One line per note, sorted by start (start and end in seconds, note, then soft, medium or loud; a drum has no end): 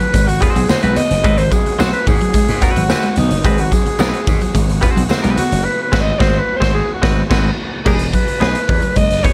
0.00 0.12 F#3 medium
0.00 7.82 F#3 medium
0.00 7.82 B3 medium
0.00 7.82 C4 medium
0.00 7.83 F#4 medium
0.00 0.29 B4 loud
0.00 closed hi-hat soft
0.00 tambourine soft
0.14 0.38 G#1 medium
0.14 0.25 G#3 medium
0.14 kick loud
0.14 closed hi-hat medium
0.14 tambourine medium
0.28 0.43 F#4 loud
0.28 closed hi-hat medium
0.41 0.61 G#3 medium
0.41 0.62 C4 medium
0.41 0.62 F#4 medium
0.41 0.70 G#4 medium
0.41 0.62 C5 medium
0.41 muted clean electric guitar stroke soft
0.41 kick medium
0.41 closed hi-hat medium
0.41 tambourine soft
0.41 low conga medium
0.56 0.68 B1 medium
0.56 0.67 F#3 medium
0.56 closed hi-hat medium
0.69 0.83 G#3 medium
0.69 0.82 C4 medium
0.69 0.82 F#4 medium
0.69 0.82 C5 medium
0.69 muted clean electric guitar stroke soft
0.69 muted slap bass stroke medium
0.69 snare loud
0.69 tambourine medium
0.69 high conga medium
0.83 0.95 B1 medium
0.83 0.95 G#3 medium
0.83 1.01 G#3 medium
0.83 1.01 C4 medium
0.83 1.01 F#4 medium
0.83 1.00 B4 medium
0.83 0.98 B4 loud
0.83 closed hi-hat medium
0.96 1.09 B3 medium
0.96 1.39 D#5 loud
0.96 closed hi-hat medium
0.96 tambourine medium
0.96 high conga medium
1.11 1.23 F#1 loud
1.11 closed hi-hat medium
1.11 tambourine soft
1.24 1.49 G#1 loud
1.24 1.42 G#3 medium
1.24 1.36 G#3 loud
1.24 1.42 C4 medium
1.24 1.42 F#4 medium
1.24 1.43 B4 loud
1.24 kick loud
1.24 closed hi-hat medium
1.24 tambourine medium
1.24 muted conga medium
1.38 1.53 C5 loud
1.38 closed hi-hat medium
1.38 tambourine soft
1.52 1.63 F#3 medium
1.52 1.79 G#4 medium
1.52 kick medium
1.52 closed hi-hat medium
1.52 tambourine medium
1.52 muted conga soft
1.66 muted slap bass stroke soft
1.66 muted clean electric guitar stroke soft
1.66 closed hi-hat soft
1.79 1.92 B1 medium
1.79 1.97 G#3 medium
1.79 1.97 C4 loud
1.79 1.92 F#4 medium
1.79 1.97 F#4 medium
1.79 1.98 C5 medium
1.79 muted clean electric guitar stroke soft
1.79 snare loud
1.79 tambourine loud
1.79 high conga medium
1.93 2.09 B4 loud
1.93 closed hi-hat soft
2.07 2.19 G#2 medium
2.07 2.19 D#3 medium
2.07 2.64 G#4 loud
2.07 kick loud
2.07 open hi-hat medium
2.07 tambourine medium
2.07 muted conga medium
2.07 low conga medium
2.21 2.33 F#3 medium
2.21 closed hi-hat soft
2.34 2.46 G#3 medium
2.34 muted slap bass stroke medium
2.34 kick medium
2.34 closed hi-hat medium
2.34 tambourine medium
2.48 2.61 G#2 loud
2.48 snare soft
2.48 closed hi-hat medium
2.62 2.82 G#3 medium
2.62 2.82 C4 medium
2.62 3.17 F#4 medium
2.62 2.82 F#4 medium
2.62 2.83 B4 loud
2.62 muted clean electric guitar stroke soft
2.62 kick medium
2.62 closed hi-hat medium
2.62 tambourine medium
2.62 low conga loud
2.76 2.88 G#1 loud
2.76 2.88 F#3 medium
2.76 closed hi-hat medium
2.89 3.07 G#3 loud
2.89 3.07 C4 loud
2.89 3.08 F#4 loud
2.89 3.08 B4 medium
2.89 muted clean electric guitar stroke soft
2.89 snare loud
2.89 tambourine medium
2.89 high conga medium
3.02 3.15 G#3 medium
3.02 closed hi-hat medium
3.16 3.29 B1 loud
3.16 3.29 B3 medium
3.16 3.47 D#4 medium
3.16 closed hi-hat medium
3.16 tambourine medium
3.16 high conga medium
3.31 3.43 F#1 loud
3.31 closed hi-hat medium
3.31 tambourine soft
3.44 3.69 G#1 loud
3.44 3.62 G#3 medium
3.44 3.56 G#3 medium
3.44 3.62 C4 medium
3.44 3.63 F#4 medium
3.44 3.62 G#4 medium
3.44 3.63 B4 loud
3.44 kick loud
3.44 closed hi-hat medium
3.44 tambourine medium
3.44 muted conga medium
3.58 3.74 F#4 medium
3.58 closed hi-hat medium
3.72 3.84 F#3 medium
3.72 4.55 G#4 medium
3.72 kick medium
3.72 closed hi-hat medium
3.72 tambourine medium
3.72 muted conga soft
3.86 muted slap bass stroke medium
3.86 muted clean electric guitar stroke soft
3.86 closed hi-hat soft
3.99 4.12 B1 medium
3.99 4.19 G#3 medium
3.99 4.20 C4 medium
3.99 4.20 F#4 medium
3.99 4.20 B4 medium
3.99 snare loud
3.99 tambourine loud
3.99 high conga medium
4.14 closed hi-hat medium
4.27 4.40 G#2 loud
4.27 4.39 D#3 medium
4.27 kick loud
4.27 open hi-hat medium
4.27 tambourine medium
4.27 muted conga medium
4.27 low conga medium
4.41 4.53 F#3 medium
4.41 closed hi-hat soft
4.41 tambourine soft
4.55 4.79 G#1 loud
4.55 4.66 G#3 medium
4.55 kick loud
4.55 closed hi-hat medium
4.55 tambourine medium
4.69 closed hi-hat medium
4.81 5.02 G#3 medium
4.81 5.02 C4 medium
4.81 5.03 F#4 loud
4.81 5.03 C5 loud
4.81 muted clean electric guitar stroke soft
4.81 kick medium
4.81 closed hi-hat medium
4.81 tambourine medium
4.81 low conga loud
4.96 5.09 B1 medium
4.96 5.08 F#3 medium
4.96 closed hi-hat medium
5.09 5.23 G#3 medium
5.09 5.22 C4 medium
5.09 5.22 F#4 medium
5.09 5.22 C5 medium
5.09 muted clean electric guitar stroke soft
5.09 muted slap bass stroke soft
5.09 snare loud
5.09 tambourine medium
5.09 high conga medium
5.22 5.36 B1 medium
5.22 5.35 G#3 medium
5.22 5.44 G#3 medium
5.22 5.44 C4 medium
5.22 5.43 F#4 medium
5.22 5.43 B4 medium
5.22 closed hi-hat medium
5.37 5.49 B3 medium
5.37 5.66 F#4 loud
5.37 closed hi-hat medium
5.37 tambourine medium
5.37 high conga medium
5.51 5.66 F#1 medium
5.51 closed hi-hat medium
5.51 tambourine soft
5.64 5.82 B4 loud
5.82 6.02 B4 loud
5.92 6.12 G#1 loud
5.92 6.11 G#3 loud
5.92 6.12 C4 medium
5.92 6.12 F#4 loud
5.92 6.12 B4 loud
5.92 kick loud
5.92 snare medium
5.92 crash medium
6.01 6.21 D#5 loud
6.19 6.39 G#1 loud
6.19 6.39 G#3 loud
6.19 6.39 C4 loud
6.19 6.39 F#4 loud
6.19 6.39 C5 medium
6.19 6.40 C5 loud
6.19 kick loud
6.19 snare loud
6.38 6.58 B4 loud
6.56 6.73 C5 loud
6.60 6.81 G#1 medium
6.60 6.80 G#3 loud
6.60 6.80 C4 loud
6.60 6.81 F#4 loud
6.60 6.81 C5 loud
6.60 kick loud
6.60 snare medium
6.74 6.92 G#4 loud
6.94 7.20 F#4 medium
7.02 7.22 G#1 loud
7.02 7.21 G#3 loud
7.02 7.22 C4 loud
7.02 7.22 F#4 loud
7.02 7.22 B4 loud
7.02 kick loud
7.02 snare loud
7.30 7.50 G#1 loud
7.30 7.49 G#3 loud
7.30 7.50 C4 loud
7.30 7.50 F#4 loud
7.30 7.50 B4 loud
7.30 kick loud
7.30 snare loud
7.30 crash medium
7.85 8.10 E1 medium
7.85 7.98 G#3 medium
7.85 8.06 B3 medium
7.85 8.06 D#4 medium
7.85 7.98 G#4 medium
7.85 8.07 G#4 medium
7.85 8.07 B4 medium
7.85 kick loud
7.85 crash medium
7.85 muted conga medium
7.99 closed hi-hat medium
8.13 8.26 F#3 medium
8.13 8.98 B4 loud
8.13 kick medium
8.13 closed hi-hat medium
8.28 muted clean electric guitar stroke soft
8.28 muted slap bass stroke soft
8.28 closed hi-hat soft
8.40 8.54 B1 medium
8.40 8.59 B3 medium
8.40 8.59 D#4 medium
8.40 8.59 G#4 loud
8.40 8.60 B4 medium
8.40 muted clean electric guitar stroke soft
8.40 snare loud
8.40 high conga medium
8.55 closed hi-hat medium
8.69 8.81 E2 medium
8.69 8.81 E3 medium
8.69 kick loud
8.69 open hi-hat medium
8.69 muted conga medium
8.82 8.94 F#3 medium
8.82 closed hi-hat soft
8.96 9.21 F#1 loud
8.96 9.09 G#3 medium
8.96 9.25 D#5 loud
8.96 kick medium
8.96 closed hi-hat medium
9.10 snare soft
9.10 closed hi-hat medium
9.23 9.33 B3 medium
9.23 9.33 D#4 medium
9.23 9.33 G#4 medium
9.23 9.33 C#5 loud
9.23 muted clean electric guitar stroke soft
9.23 kick loud
9.23 closed hi-hat medium
9.23 low conga medium